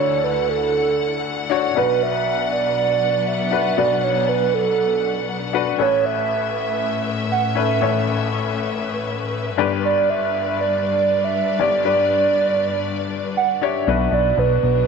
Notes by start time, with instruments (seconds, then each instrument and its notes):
Already playing: string section D2 D3 E4 A4 F#5, upright piano D2 D3 D4 F#4 A4 C#5
0.00 soft synth lead C#5
0.24 soft synth lead B4
0.50 soft synth lead A4
1.50 upright piano D4 F#4 C#5
1.75 upright piano B1 B2 D4 F#4 B4, string section B2 F#3 D4 B4, soft synth lead B4
2.03 soft synth lead E5
2.53 soft synth lead D5
2.77 soft synth lead D5
3.28 soft synth lead E5
3.51 upright piano D4 F#4 B4
3.77 upright piano B1 B2 D4 F#4 B4, soft synth lead D5
4.04 soft synth lead C#5
4.29 soft synth lead B4
4.54 soft synth lead A4
5.53 upright piano D4 F#4 B4
5.78 upright piano A1 A2 C#4 A4 B4, string section A2 A3 C#4 B4 E5, soft synth lead C#5
6.06 soft synth lead E5
6.56 soft synth lead E5
7.32 soft synth lead F#5
7.55 upright piano C#4 A4 B4, soft synth lead E5
7.81 upright piano A1 A2 C#4 A4 C#5
9.57 upright piano G1 G2 D4 G4 B4, string section G2 G3 D4 D5
9.85 soft synth lead D5
10.10 soft synth lead E5
10.61 soft synth lead D5
10.86 soft synth lead D5
11.24 soft synth lead E5
11.59 upright piano G1 G2 D4 G4 D5, soft synth lead D5
11.84 upright piano D4 G4 B4, soft synth lead D5
13.37 soft synth lead F#5
13.61 upright piano D4 G4 C#5, soft synth lead E5
13.87 analog synth bass B1, upright piano B2 D4 F#4 B4, string section F#3 B3 D4
14.12 analog synth bass B1, soft synth lead D5
14.37 analog synth bass B1, soft synth lead B4
14.63 analog synth bass B1, soft synth lead B4